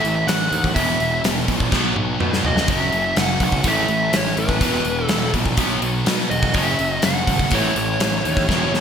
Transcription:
Already playing: E5
0.02 A1 A2 E3 A3, open hi-hat
0.16 E5
0.27 A1 A2 E3 A3 F#5, snare, open hi-hat
0.51 D#2 A2 E3 A3, open hi-hat
0.64 kick
0.74 E1 E2 B2 E3 E5, kick, open hi-hat
1.00 E1 E2 B2 E3, open hi-hat
1.23 E1 E2 B2 E3, snare, open hi-hat
1.47 A#1 E2 B2 E3, kick, open hi-hat
1.60 kick
1.71 B1 B2 F#3 B3, kick, snare
1.94 B1 B2 F#3 B3, mid tom
2.20 B2 F#3 B3, mid tom
2.33 snare
2.44 F1 B2 F#3 B3 D#5, floor tom
2.57 snare
2.68 F#1 F#2 C#3 F#3 E5, kick, open hi-hat
2.92 F#1 F#2 C#3 F#3, open hi-hat
3.15 F#1 F#2 C#3 F#3 F#5, snare, open hi-hat
3.40 B1 F#2 C#3 F#3 F#5, kick, open hi-hat
3.52 kick
3.63 A1 A2 E3 A3, kick, open hi-hat
3.68 E5
3.88 A1 A2 E3 A3, open hi-hat
4.12 A1 A2 E3 A3 C#5, snare, open hi-hat
4.37 A1 A2 E3 A3 B4, open hi-hat
4.49 kick
4.61 E1 E2 B2 E3, kick, open hi-hat
4.85 E1 E2 B2 E3, open hi-hat
5.04 A4
5.09 E1 E2 B2 E3, snare, open hi-hat
5.33 A#1 E2 B2 E3, kick, open hi-hat
5.46 kick
5.57 B1 B2 F#3 B3, kick, open hi-hat
5.82 B1 B2 F#3 B3, open hi-hat
6.06 B2 F#3 B3, snare, open hi-hat
6.30 E1 B2 F#3 B3 D#5, open hi-hat
6.43 kick
6.54 F#1 F#2 C#3 F#3 E5, kick, open hi-hat
6.79 F#1 F#2 C#3 F#3, open hi-hat
6.93 D#5
7.02 F#1 F#2 C#3 F#3 F#5, snare, open hi-hat
7.27 G#1 F#2 C#3 F#3, kick, open hi-hat
7.39 kick
7.51 A1 A2 E3 A3, kick, open hi-hat
7.55 C#5
7.75 A1 A2 E3 A3, open hi-hat
8.00 A1 A2 E3 A3, snare, open hi-hat
8.24 D#2 A2 E3 A3, open hi-hat
8.37 kick
8.49 E1 E2 B2 E3, kick, snare
8.72 E1 E2 B2 E3, snare

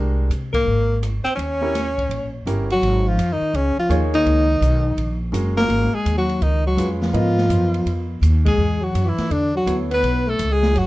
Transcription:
Already playing: C2 G#3 D4 G4 A#4
0.30 C3, hi-hat pedal, ride
0.53 A#3 A#4, kick, ride
0.65 G#1
1.03 cross-stick, hi-hat pedal, ride
1.24 C4 C5, muted upright bass stroke, ride
1.36 D#2 C#4 C#5, ride
1.61 C#4 E4 G4 A#4
1.75 snare, hi-hat pedal, ride
1.98 kick, ride
2.09 A#1, ride
2.46 G1 C#4 E4 G4 A#4, cross-stick, hi-hat pedal, ride
2.70 F#3 F#4, ride
2.81 G#1, ride
3.08 F3 F4
3.18 F2, hi-hat pedal, ride
3.32 D#3 D#4
3.41 muted upright bass stroke
3.53 C#2 C#3 C#4, ride
3.77 F3 F4, muted upright bass stroke
3.89 D#2 A#3 D#4 G#4 C#5, hi-hat pedal, ride
4.14 D#3 D#4, ride
4.25 C#2, ride
4.61 B1, hi-hat pedal, ride
4.97 A#1, ride
5.32 F#1 G#3 C#4 F#4 A#4, hi-hat pedal, ride
5.57 A#3 A#4, snare, ride
5.69 G#1, ride
5.93 G#3 G#4, muted upright bass stroke
6.05 D#2, hi-hat pedal, ride
6.17 F#3 F#4
6.29 ride
6.41 C#2 D#3 D#4, ride
6.66 F#3 F#4
6.77 F2 G#3 C#4 F4 B4, hi-hat pedal, ride
7.02 F3 F4, snare
7.13 G#2 B3 F4 A#4 D#5, ride
7.38 snare
7.49 F#2, hi-hat pedal, ride
7.74 ride
7.86 F2, ride
8.21 D#2, hi-hat pedal, ride
8.45 G#3 G#4, kick, ride
8.58 E2
8.82 F#3 F#4
8.95 F#2, hi-hat pedal, ride
9.05 E3
9.09 E4
9.18 muted upright bass stroke, snare, ride
9.30 E2 D3 D4, ride
9.55 F#3 F#4
9.66 D2 B3 E4 A4 C#5, hi-hat pedal, ride
9.91 B3 B4, ride
10.03 B1, ride
10.27 A3 A4
10.39 C#2, hi-hat pedal, ride
10.51 G#3 G#4
10.63 snare
10.75 F#1 F#3 F#4, ride

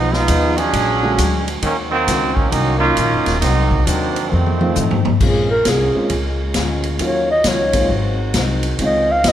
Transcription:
Already playing: B1 F3 G#3 B3 D#4 G#4
0.12 G#3 B3 D#4 F4, snare
0.28 D#2 F3 B3 D#4 G#4, kick, hi-hat pedal, ride
0.56 F#3 C#4 D4 G#4, ride
0.72 A#1 A#2 F#3 G#3 D4, kick, ride
1.03 D3 G#3 A#3 C#4 F#4
1.17 D2 A#2 F#3 G#3 D4, kick, hi-hat pedal, ride
1.48 ride
1.62 D#2 D#3 F#3 A#3 C#4 F#4, kick, ride
1.89 D#3 F#3 A#3 C4
2.07 C#2 D#3 A#3 C#4 F#4, kick, snare, hi-hat pedal, ride
2.34 D#3 F#3 A#3 C#4, kick
2.49 C2 D#3 F#3 A#3 C#4 D#4, kick, ride
2.54 C#4 F#4
2.78 D#3 F#3 A#3 C#4 D#4 F4
2.83 A#3 C#4 F4
2.97 A#1 D#3 A#3 C#4 F#4, kick, hi-hat pedal, ride
3.12 F#1
3.26 D#1, snare, ride
3.39 C2 C3 F#3 A#3 C4 D#4, kick, snare, ride
3.44 F#3 A#3 D#4
3.71 kick
3.83 D#2 C3 F#3 A#3 C4 D4, kick, hi-hat pedal, ride
3.88 A#3 D#4
4.16 ride
4.29 F2 D#3 F3 A3 C4, high tom
4.33 F2 C4
4.46 high tom
4.61 F3 A3 C4 D#4 F4, high tom
4.75 F2 A2 D#3 A3 C4, floor tom, hi-hat pedal
4.91 F2, floor tom
5.05 D#2, floor tom
5.20 A#1 A#2 C#3 G#3 A#3 C4 C#4 F4, kick, crash
5.25 G#4
5.51 A#4
5.65 C2 A#2 G#3 C#4 F4, kick, snare, hi-hat pedal, ride
5.69 G#4
5.95 G#3 A#3 C4 C#4 F4, muted upright bass stroke
6.10 C#2 A#2 G#3 C#4 F4, kick, ride
6.54 D2 A#2 G#3 C#4 F4, kick, snare, hi-hat pedal, ride
6.83 ride
6.99 D#2 D#3 F#3 A#3 C#4 D#4 F4, kick, ride
7.05 C#5
7.31 D#5
7.44 C#2 D#3 F#3 C#4 F4, kick, snare, hi-hat pedal, ride
7.48 C#5
7.73 G#3 A#3 C4 D#4 F4, kick, ride
7.88 G#1 G#2 F#3 G#3 C4 D#4 F#4, kick
8.34 C2 G#2 F#3 C4 D#4, kick, snare, hi-hat pedal, ride
8.63 ride
8.79 C#2 C#3 D#3 F3 G#3 C4 C#4 D#4 F4, kick, ride
8.85 D#5
9.12 F5
9.24 D#2 C#3 F3 C4 D#4, kick, snare, hi-hat pedal, ride
9.29 D#5

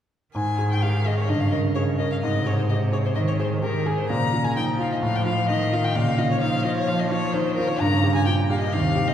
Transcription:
0.34 G#2 D#3 G#5
0.59 G#4
0.72 G5
0.82 G4 F5
1.06 G#4 D#5
1.18 C#5
1.29 G2 C#3 D#5
1.40 F5
1.52 A#4 D#5
1.75 G#4 C#5
1.98 A#4 D#5
2.12 F5
2.23 G#2 C3 D#5
2.46 G#4 C#5
2.58 C5
2.69 C3 G4 D#5
2.93 G#4 C#5
3.05 C5
3.15 D#3 D#5
3.28 C#5
3.39 G#4 C5
3.62 D#3 G4 A#4
3.86 G#4
3.97 C5
4.09 A#2 C#3 A#5
4.33 F4
4.44 G#5
4.56 F3 D#4 G5
4.79 F4 F5
4.92 D#5
5.02 A2 F5
5.15 G5
5.26 F4 F5
5.49 D#3 D#4 D#5
5.73 F4 F5
5.84 G5
5.95 A#2 C#3 F5
6.18 F4 D#5
6.31 C#5
6.41 F3 D#4 F5
6.64 F4 D#5
6.77 C#5
6.88 F3 F5
7.00 D#5
7.10 F4 C#5
7.33 D#3 D#4 C5
7.56 F4 A#4
7.68 C#5
7.80 G2 C#3 A#5
8.04 G4
8.15 G#5
8.26 A#2 F4 G5
8.50 G4 F5
8.61 D#5
8.72 D#2 C3 F5
8.96 G4
9.08 D#5

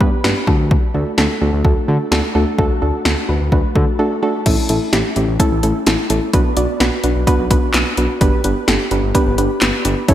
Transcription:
0.01 G2 B3 D4 G4 B4, kick
0.24 G1 B3 D4 G4 B4, snare
0.47 D2 A3 D4 F#4 A4, kick
0.71 kick
0.94 D2 A3 D4 F#4 A4
1.18 D2 A3 D4 F#4 A4, snare
1.41 D2 A3 D4 F#4 A4
1.53 D2
1.65 D2 A3 D4 F#4 A4, kick
1.88 D3 A3 D4 F#4 A4
2.12 D2 A3 D4 F#4 A4, snare
2.35 D2 A3 D4 F#4 A4
2.58 D2 A3 D4 F#4 A4, kick
2.82 D2 A3 D4 F#4 A4
3.05 D2 A3 D4 F#4 A4, snare
3.29 D2 A3 D4 F#4 B4
3.41 D2
3.52 D2 A3 D4 F#4 B4, kick
3.75 D3 A3 D4 F#4 A4, kick
3.99 A3 D4 F#4 A4
4.23 A3 D4 F#4 A4
4.46 A1 A3 C#4 E4 A4, kick, closed hi-hat, crash
4.69 A1 A3 C#4 E4 A4, closed hi-hat
4.93 A1 A3 C#4 E4 G4, snare, closed hi-hat
5.16 A1 A3 C#4 E4 G4, closed hi-hat
5.28 A1
5.40 A3 C#4 E4 A4, kick, closed hi-hat
5.51 A1
5.63 A1 A3 C#4 E4 A4, closed hi-hat
5.86 A1 A3 C#4 E4 A4, snare, closed hi-hat
6.10 A1 A3 C#4 E4 A4, closed hi-hat
6.33 B1 B3 D4 F#4 B4, kick, closed hi-hat
6.57 B1 B3 D4 F#4 D5, closed hi-hat
6.80 B1 B3 D4 F#4 B4, snare, closed hi-hat
7.04 B1 B3 D4 F#4 B4, closed hi-hat
7.16 B1
7.27 B3 D4 F#4 B4, kick, closed hi-hat
7.39 B1
7.51 B1 B3 D4 F#4 B4, kick, closed hi-hat
7.74 B1 B3 D4 F#4 B4, snare, clap, closed hi-hat
7.97 B1 B3 D4 F#4 B4, closed hi-hat
8.21 G1 B3 D4 G4 B4, kick, closed hi-hat
8.44 G1 B3 D4 G4 B4, closed hi-hat
8.68 G1 B3 D4 G4 A4, snare, closed hi-hat
8.91 G1 B3 D4 G4 B4, closed hi-hat
9.03 G1
9.15 B3 D4 G4 B4, kick, closed hi-hat
9.26 G1
9.38 G1 B3 D4 G4 B4, closed hi-hat
9.62 G1 B3 D4 G4 B4, snare, clap, closed hi-hat
9.85 G1 B3 D4 G4 B4, closed hi-hat
10.08 A1 C#4 E4 A4 C#5, kick, closed hi-hat

